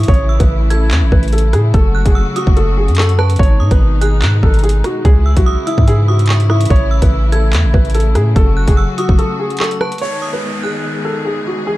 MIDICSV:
0, 0, Header, 1, 7, 480
1, 0, Start_track
1, 0, Tempo, 413793
1, 96, Time_signature, 4, 2, 24, 8
1, 13660, End_track
2, 0, Start_track
2, 0, Title_t, "Synth bell"
2, 0, Program_c, 0, 98
2, 337, Note_on_c, 0, 88, 76
2, 788, Note_off_c, 0, 88, 0
2, 816, Note_on_c, 0, 92, 84
2, 1493, Note_off_c, 0, 92, 0
2, 2257, Note_on_c, 0, 90, 75
2, 2485, Note_off_c, 0, 90, 0
2, 2496, Note_on_c, 0, 88, 83
2, 2724, Note_off_c, 0, 88, 0
2, 2739, Note_on_c, 0, 87, 87
2, 3415, Note_off_c, 0, 87, 0
2, 3456, Note_on_c, 0, 85, 95
2, 3685, Note_off_c, 0, 85, 0
2, 3697, Note_on_c, 0, 81, 102
2, 3925, Note_off_c, 0, 81, 0
2, 4175, Note_on_c, 0, 87, 82
2, 4627, Note_off_c, 0, 87, 0
2, 4657, Note_on_c, 0, 90, 86
2, 5334, Note_off_c, 0, 90, 0
2, 6098, Note_on_c, 0, 88, 73
2, 6326, Note_off_c, 0, 88, 0
2, 6338, Note_on_c, 0, 87, 93
2, 6565, Note_off_c, 0, 87, 0
2, 6577, Note_on_c, 0, 88, 88
2, 7028, Note_off_c, 0, 88, 0
2, 7057, Note_on_c, 0, 87, 87
2, 7285, Note_off_c, 0, 87, 0
2, 7296, Note_on_c, 0, 85, 84
2, 7524, Note_off_c, 0, 85, 0
2, 7537, Note_on_c, 0, 87, 82
2, 7765, Note_off_c, 0, 87, 0
2, 8016, Note_on_c, 0, 88, 78
2, 8468, Note_off_c, 0, 88, 0
2, 8495, Note_on_c, 0, 92, 82
2, 9173, Note_off_c, 0, 92, 0
2, 9937, Note_on_c, 0, 90, 74
2, 10165, Note_off_c, 0, 90, 0
2, 10176, Note_on_c, 0, 88, 82
2, 10404, Note_off_c, 0, 88, 0
2, 10419, Note_on_c, 0, 87, 85
2, 11095, Note_off_c, 0, 87, 0
2, 11137, Note_on_c, 0, 85, 96
2, 11365, Note_off_c, 0, 85, 0
2, 11377, Note_on_c, 0, 81, 100
2, 11605, Note_off_c, 0, 81, 0
2, 11854, Note_on_c, 0, 87, 79
2, 12307, Note_off_c, 0, 87, 0
2, 12335, Note_on_c, 0, 90, 79
2, 13013, Note_off_c, 0, 90, 0
2, 13660, End_track
3, 0, Start_track
3, 0, Title_t, "Grand piano"
3, 0, Program_c, 1, 0
3, 99, Note_on_c, 1, 73, 98
3, 443, Note_off_c, 1, 73, 0
3, 464, Note_on_c, 1, 71, 76
3, 796, Note_off_c, 1, 71, 0
3, 817, Note_on_c, 1, 69, 79
3, 1033, Note_off_c, 1, 69, 0
3, 1301, Note_on_c, 1, 71, 73
3, 1515, Note_off_c, 1, 71, 0
3, 1540, Note_on_c, 1, 69, 82
3, 1755, Note_off_c, 1, 69, 0
3, 1780, Note_on_c, 1, 68, 87
3, 1995, Note_off_c, 1, 68, 0
3, 2015, Note_on_c, 1, 69, 96
3, 2361, Note_off_c, 1, 69, 0
3, 2382, Note_on_c, 1, 68, 76
3, 2715, Note_off_c, 1, 68, 0
3, 2734, Note_on_c, 1, 66, 78
3, 2952, Note_off_c, 1, 66, 0
3, 2976, Note_on_c, 1, 69, 88
3, 3193, Note_off_c, 1, 69, 0
3, 3220, Note_on_c, 1, 68, 81
3, 3435, Note_off_c, 1, 68, 0
3, 3458, Note_on_c, 1, 69, 88
3, 3674, Note_off_c, 1, 69, 0
3, 3696, Note_on_c, 1, 71, 85
3, 3913, Note_off_c, 1, 71, 0
3, 3938, Note_on_c, 1, 73, 105
3, 4282, Note_off_c, 1, 73, 0
3, 4305, Note_on_c, 1, 71, 84
3, 4636, Note_off_c, 1, 71, 0
3, 4655, Note_on_c, 1, 68, 82
3, 4872, Note_off_c, 1, 68, 0
3, 5135, Note_on_c, 1, 69, 84
3, 5352, Note_off_c, 1, 69, 0
3, 5375, Note_on_c, 1, 68, 87
3, 5592, Note_off_c, 1, 68, 0
3, 5622, Note_on_c, 1, 66, 86
3, 5836, Note_off_c, 1, 66, 0
3, 5857, Note_on_c, 1, 68, 108
3, 6202, Note_off_c, 1, 68, 0
3, 6227, Note_on_c, 1, 66, 88
3, 6557, Note_off_c, 1, 66, 0
3, 6576, Note_on_c, 1, 64, 90
3, 6792, Note_off_c, 1, 64, 0
3, 6818, Note_on_c, 1, 68, 100
3, 7034, Note_off_c, 1, 68, 0
3, 7057, Note_on_c, 1, 66, 78
3, 7508, Note_off_c, 1, 66, 0
3, 7538, Note_on_c, 1, 64, 87
3, 7754, Note_off_c, 1, 64, 0
3, 7779, Note_on_c, 1, 73, 102
3, 8123, Note_off_c, 1, 73, 0
3, 8142, Note_on_c, 1, 71, 78
3, 8475, Note_off_c, 1, 71, 0
3, 8495, Note_on_c, 1, 69, 81
3, 8712, Note_off_c, 1, 69, 0
3, 8979, Note_on_c, 1, 71, 76
3, 9194, Note_off_c, 1, 71, 0
3, 9218, Note_on_c, 1, 69, 85
3, 9434, Note_off_c, 1, 69, 0
3, 9458, Note_on_c, 1, 68, 89
3, 9674, Note_off_c, 1, 68, 0
3, 9694, Note_on_c, 1, 69, 98
3, 10041, Note_off_c, 1, 69, 0
3, 10062, Note_on_c, 1, 68, 77
3, 10394, Note_off_c, 1, 68, 0
3, 10415, Note_on_c, 1, 66, 80
3, 10632, Note_off_c, 1, 66, 0
3, 10656, Note_on_c, 1, 69, 86
3, 10872, Note_off_c, 1, 69, 0
3, 10899, Note_on_c, 1, 68, 82
3, 11114, Note_off_c, 1, 68, 0
3, 11138, Note_on_c, 1, 69, 89
3, 11354, Note_off_c, 1, 69, 0
3, 11376, Note_on_c, 1, 71, 83
3, 11593, Note_off_c, 1, 71, 0
3, 11617, Note_on_c, 1, 73, 101
3, 11962, Note_off_c, 1, 73, 0
3, 11983, Note_on_c, 1, 71, 83
3, 12315, Note_off_c, 1, 71, 0
3, 12335, Note_on_c, 1, 68, 74
3, 12552, Note_off_c, 1, 68, 0
3, 12814, Note_on_c, 1, 69, 81
3, 13032, Note_off_c, 1, 69, 0
3, 13054, Note_on_c, 1, 68, 76
3, 13271, Note_off_c, 1, 68, 0
3, 13301, Note_on_c, 1, 66, 81
3, 13516, Note_off_c, 1, 66, 0
3, 13536, Note_on_c, 1, 68, 102
3, 13660, Note_off_c, 1, 68, 0
3, 13660, End_track
4, 0, Start_track
4, 0, Title_t, "String section"
4, 0, Program_c, 2, 48
4, 0, Note_on_c, 2, 49, 80
4, 0, Note_on_c, 2, 52, 74
4, 98, Note_on_c, 2, 57, 74
4, 98, Note_on_c, 2, 64, 87
4, 1978, Note_off_c, 2, 49, 0
4, 1978, Note_off_c, 2, 52, 0
4, 1998, Note_off_c, 2, 64, 0
4, 2018, Note_on_c, 2, 49, 80
4, 2018, Note_on_c, 2, 54, 72
4, 2018, Note_on_c, 2, 66, 88
4, 3899, Note_off_c, 2, 57, 0
4, 3918, Note_off_c, 2, 49, 0
4, 3918, Note_off_c, 2, 54, 0
4, 3918, Note_off_c, 2, 66, 0
4, 3936, Note_on_c, 2, 47, 79
4, 3936, Note_on_c, 2, 51, 74
4, 3937, Note_on_c, 2, 56, 75
4, 3937, Note_on_c, 2, 63, 89
4, 5837, Note_off_c, 2, 47, 0
4, 5837, Note_off_c, 2, 51, 0
4, 5838, Note_off_c, 2, 63, 0
4, 5856, Note_on_c, 2, 49, 81
4, 5856, Note_on_c, 2, 52, 75
4, 5856, Note_on_c, 2, 64, 90
4, 7738, Note_off_c, 2, 56, 0
4, 7778, Note_on_c, 2, 57, 74
4, 9658, Note_off_c, 2, 52, 0
4, 9658, Note_off_c, 2, 64, 0
4, 9697, Note_on_c, 2, 54, 74
4, 9698, Note_on_c, 2, 66, 89
4, 11570, Note_off_c, 2, 49, 0
4, 11579, Note_off_c, 2, 57, 0
4, 11598, Note_off_c, 2, 54, 0
4, 11598, Note_off_c, 2, 66, 0
4, 11617, Note_on_c, 2, 56, 69
4, 11617, Note_on_c, 2, 59, 67
4, 11617, Note_on_c, 2, 68, 84
4, 11618, Note_on_c, 2, 51, 74
4, 13518, Note_off_c, 2, 51, 0
4, 13518, Note_off_c, 2, 59, 0
4, 13537, Note_on_c, 2, 52, 73
4, 13537, Note_on_c, 2, 61, 70
4, 13660, Note_off_c, 2, 52, 0
4, 13660, Note_off_c, 2, 56, 0
4, 13660, Note_off_c, 2, 61, 0
4, 13660, Note_off_c, 2, 68, 0
4, 13660, End_track
5, 0, Start_track
5, 0, Title_t, "808-style bass"
5, 0, Program_c, 3, 38
5, 97, Note_on_c, 3, 33, 120
5, 449, Note_off_c, 3, 33, 0
5, 465, Note_on_c, 3, 33, 105
5, 1058, Note_on_c, 3, 40, 102
5, 1075, Note_off_c, 3, 33, 0
5, 1185, Note_on_c, 3, 33, 100
5, 1202, Note_off_c, 3, 40, 0
5, 1292, Note_off_c, 3, 33, 0
5, 1299, Note_on_c, 3, 33, 108
5, 1778, Note_on_c, 3, 45, 102
5, 1795, Note_off_c, 3, 33, 0
5, 2005, Note_off_c, 3, 45, 0
5, 2017, Note_on_c, 3, 30, 118
5, 2370, Note_off_c, 3, 30, 0
5, 2385, Note_on_c, 3, 30, 102
5, 2615, Note_off_c, 3, 30, 0
5, 2864, Note_on_c, 3, 30, 108
5, 3344, Note_on_c, 3, 42, 101
5, 3361, Note_off_c, 3, 30, 0
5, 3907, Note_off_c, 3, 42, 0
5, 3937, Note_on_c, 3, 32, 111
5, 4177, Note_on_c, 3, 44, 108
5, 4195, Note_off_c, 3, 32, 0
5, 4298, Note_off_c, 3, 44, 0
5, 4304, Note_on_c, 3, 32, 107
5, 4896, Note_on_c, 3, 44, 101
5, 4914, Note_off_c, 3, 32, 0
5, 5125, Note_off_c, 3, 44, 0
5, 5138, Note_on_c, 3, 32, 105
5, 5598, Note_off_c, 3, 32, 0
5, 5857, Note_on_c, 3, 37, 115
5, 6209, Note_off_c, 3, 37, 0
5, 6225, Note_on_c, 3, 35, 101
5, 6455, Note_off_c, 3, 35, 0
5, 6704, Note_on_c, 3, 44, 104
5, 7734, Note_off_c, 3, 44, 0
5, 7776, Note_on_c, 3, 33, 115
5, 8129, Note_off_c, 3, 33, 0
5, 8144, Note_on_c, 3, 33, 109
5, 8737, Note_on_c, 3, 40, 99
5, 8755, Note_off_c, 3, 33, 0
5, 8864, Note_on_c, 3, 33, 102
5, 8882, Note_off_c, 3, 40, 0
5, 8971, Note_off_c, 3, 33, 0
5, 8978, Note_on_c, 3, 33, 104
5, 9457, Note_on_c, 3, 45, 100
5, 9475, Note_off_c, 3, 33, 0
5, 9685, Note_off_c, 3, 45, 0
5, 9697, Note_on_c, 3, 30, 116
5, 10049, Note_off_c, 3, 30, 0
5, 10064, Note_on_c, 3, 30, 99
5, 10295, Note_off_c, 3, 30, 0
5, 10543, Note_on_c, 3, 30, 110
5, 10656, Note_off_c, 3, 30, 0
5, 13660, End_track
6, 0, Start_track
6, 0, Title_t, "Downlifter"
6, 0, Program_c, 4, 103
6, 11617, Note_on_c, 4, 60, 84
6, 13660, Note_off_c, 4, 60, 0
6, 13660, End_track
7, 0, Start_track
7, 0, Title_t, "Drums"
7, 41, Note_on_c, 9, 42, 73
7, 97, Note_off_c, 9, 42, 0
7, 97, Note_on_c, 9, 36, 127
7, 97, Note_on_c, 9, 42, 61
7, 161, Note_off_c, 9, 42, 0
7, 161, Note_on_c, 9, 42, 49
7, 213, Note_off_c, 9, 36, 0
7, 277, Note_off_c, 9, 42, 0
7, 465, Note_on_c, 9, 36, 99
7, 465, Note_on_c, 9, 42, 96
7, 581, Note_off_c, 9, 36, 0
7, 581, Note_off_c, 9, 42, 0
7, 818, Note_on_c, 9, 42, 82
7, 934, Note_off_c, 9, 42, 0
7, 1058, Note_on_c, 9, 39, 123
7, 1058, Note_on_c, 9, 42, 80
7, 1174, Note_off_c, 9, 39, 0
7, 1174, Note_off_c, 9, 42, 0
7, 1299, Note_on_c, 9, 36, 89
7, 1415, Note_off_c, 9, 36, 0
7, 1425, Note_on_c, 9, 42, 47
7, 1481, Note_off_c, 9, 42, 0
7, 1481, Note_on_c, 9, 42, 59
7, 1538, Note_off_c, 9, 42, 0
7, 1538, Note_on_c, 9, 42, 72
7, 1601, Note_off_c, 9, 42, 0
7, 1601, Note_on_c, 9, 42, 79
7, 1717, Note_off_c, 9, 42, 0
7, 1778, Note_on_c, 9, 37, 87
7, 1778, Note_on_c, 9, 42, 84
7, 1894, Note_off_c, 9, 37, 0
7, 1894, Note_off_c, 9, 42, 0
7, 2017, Note_on_c, 9, 36, 127
7, 2017, Note_on_c, 9, 42, 79
7, 2133, Note_off_c, 9, 36, 0
7, 2133, Note_off_c, 9, 42, 0
7, 2384, Note_on_c, 9, 42, 98
7, 2385, Note_on_c, 9, 36, 99
7, 2500, Note_off_c, 9, 42, 0
7, 2501, Note_off_c, 9, 36, 0
7, 2737, Note_on_c, 9, 42, 80
7, 2853, Note_off_c, 9, 42, 0
7, 2864, Note_on_c, 9, 36, 99
7, 2977, Note_on_c, 9, 42, 77
7, 2980, Note_off_c, 9, 36, 0
7, 3093, Note_off_c, 9, 42, 0
7, 3345, Note_on_c, 9, 42, 48
7, 3420, Note_off_c, 9, 42, 0
7, 3420, Note_on_c, 9, 42, 64
7, 3458, Note_on_c, 9, 39, 119
7, 3500, Note_off_c, 9, 42, 0
7, 3500, Note_on_c, 9, 42, 78
7, 3574, Note_off_c, 9, 39, 0
7, 3584, Note_off_c, 9, 42, 0
7, 3584, Note_on_c, 9, 42, 77
7, 3697, Note_on_c, 9, 37, 90
7, 3700, Note_off_c, 9, 42, 0
7, 3813, Note_off_c, 9, 37, 0
7, 3824, Note_on_c, 9, 42, 73
7, 3899, Note_off_c, 9, 42, 0
7, 3899, Note_on_c, 9, 42, 71
7, 3937, Note_on_c, 9, 36, 127
7, 3979, Note_off_c, 9, 42, 0
7, 3979, Note_on_c, 9, 42, 70
7, 4053, Note_off_c, 9, 36, 0
7, 4095, Note_off_c, 9, 42, 0
7, 4303, Note_on_c, 9, 42, 99
7, 4304, Note_on_c, 9, 36, 98
7, 4419, Note_off_c, 9, 42, 0
7, 4420, Note_off_c, 9, 36, 0
7, 4657, Note_on_c, 9, 42, 81
7, 4773, Note_off_c, 9, 42, 0
7, 4896, Note_on_c, 9, 39, 127
7, 4896, Note_on_c, 9, 42, 75
7, 5012, Note_off_c, 9, 39, 0
7, 5012, Note_off_c, 9, 42, 0
7, 5138, Note_on_c, 9, 36, 91
7, 5254, Note_off_c, 9, 36, 0
7, 5264, Note_on_c, 9, 42, 49
7, 5321, Note_off_c, 9, 42, 0
7, 5321, Note_on_c, 9, 42, 57
7, 5377, Note_off_c, 9, 42, 0
7, 5377, Note_on_c, 9, 42, 68
7, 5441, Note_off_c, 9, 42, 0
7, 5441, Note_on_c, 9, 42, 80
7, 5557, Note_off_c, 9, 42, 0
7, 5617, Note_on_c, 9, 37, 90
7, 5617, Note_on_c, 9, 42, 82
7, 5733, Note_off_c, 9, 37, 0
7, 5733, Note_off_c, 9, 42, 0
7, 5857, Note_on_c, 9, 36, 124
7, 5857, Note_on_c, 9, 42, 78
7, 5973, Note_off_c, 9, 36, 0
7, 5973, Note_off_c, 9, 42, 0
7, 6224, Note_on_c, 9, 42, 100
7, 6225, Note_on_c, 9, 36, 98
7, 6340, Note_off_c, 9, 42, 0
7, 6341, Note_off_c, 9, 36, 0
7, 6577, Note_on_c, 9, 42, 81
7, 6693, Note_off_c, 9, 42, 0
7, 6704, Note_on_c, 9, 36, 100
7, 6817, Note_on_c, 9, 42, 80
7, 6820, Note_off_c, 9, 36, 0
7, 6933, Note_off_c, 9, 42, 0
7, 7184, Note_on_c, 9, 42, 68
7, 7259, Note_off_c, 9, 42, 0
7, 7259, Note_on_c, 9, 42, 65
7, 7297, Note_on_c, 9, 39, 121
7, 7339, Note_off_c, 9, 42, 0
7, 7339, Note_on_c, 9, 42, 64
7, 7413, Note_off_c, 9, 39, 0
7, 7424, Note_off_c, 9, 42, 0
7, 7424, Note_on_c, 9, 42, 79
7, 7537, Note_on_c, 9, 37, 88
7, 7540, Note_off_c, 9, 42, 0
7, 7653, Note_off_c, 9, 37, 0
7, 7663, Note_on_c, 9, 42, 86
7, 7720, Note_off_c, 9, 42, 0
7, 7720, Note_on_c, 9, 42, 72
7, 7777, Note_on_c, 9, 36, 126
7, 7836, Note_off_c, 9, 42, 0
7, 7840, Note_on_c, 9, 42, 50
7, 7893, Note_off_c, 9, 36, 0
7, 7956, Note_off_c, 9, 42, 0
7, 8144, Note_on_c, 9, 36, 99
7, 8144, Note_on_c, 9, 42, 95
7, 8260, Note_off_c, 9, 36, 0
7, 8260, Note_off_c, 9, 42, 0
7, 8497, Note_on_c, 9, 42, 77
7, 8613, Note_off_c, 9, 42, 0
7, 8736, Note_on_c, 9, 39, 127
7, 8736, Note_on_c, 9, 42, 80
7, 8852, Note_off_c, 9, 39, 0
7, 8852, Note_off_c, 9, 42, 0
7, 8978, Note_on_c, 9, 36, 94
7, 9094, Note_off_c, 9, 36, 0
7, 9104, Note_on_c, 9, 42, 47
7, 9160, Note_off_c, 9, 42, 0
7, 9160, Note_on_c, 9, 42, 58
7, 9217, Note_off_c, 9, 42, 0
7, 9217, Note_on_c, 9, 42, 70
7, 9280, Note_off_c, 9, 42, 0
7, 9280, Note_on_c, 9, 42, 77
7, 9396, Note_off_c, 9, 42, 0
7, 9457, Note_on_c, 9, 37, 87
7, 9457, Note_on_c, 9, 42, 83
7, 9573, Note_off_c, 9, 37, 0
7, 9573, Note_off_c, 9, 42, 0
7, 9697, Note_on_c, 9, 36, 126
7, 9697, Note_on_c, 9, 42, 81
7, 9813, Note_off_c, 9, 36, 0
7, 9813, Note_off_c, 9, 42, 0
7, 10064, Note_on_c, 9, 36, 98
7, 10064, Note_on_c, 9, 42, 99
7, 10180, Note_off_c, 9, 36, 0
7, 10180, Note_off_c, 9, 42, 0
7, 10417, Note_on_c, 9, 42, 77
7, 10533, Note_off_c, 9, 42, 0
7, 10543, Note_on_c, 9, 36, 98
7, 10657, Note_on_c, 9, 42, 80
7, 10659, Note_off_c, 9, 36, 0
7, 10773, Note_off_c, 9, 42, 0
7, 11024, Note_on_c, 9, 42, 49
7, 11099, Note_off_c, 9, 42, 0
7, 11099, Note_on_c, 9, 42, 64
7, 11136, Note_on_c, 9, 39, 118
7, 11180, Note_off_c, 9, 42, 0
7, 11180, Note_on_c, 9, 42, 80
7, 11252, Note_off_c, 9, 39, 0
7, 11264, Note_off_c, 9, 42, 0
7, 11264, Note_on_c, 9, 42, 79
7, 11377, Note_on_c, 9, 37, 87
7, 11380, Note_off_c, 9, 42, 0
7, 11493, Note_off_c, 9, 37, 0
7, 11505, Note_on_c, 9, 42, 71
7, 11580, Note_off_c, 9, 42, 0
7, 11580, Note_on_c, 9, 42, 71
7, 11660, Note_off_c, 9, 42, 0
7, 11660, Note_on_c, 9, 42, 69
7, 11776, Note_off_c, 9, 42, 0
7, 13660, End_track
0, 0, End_of_file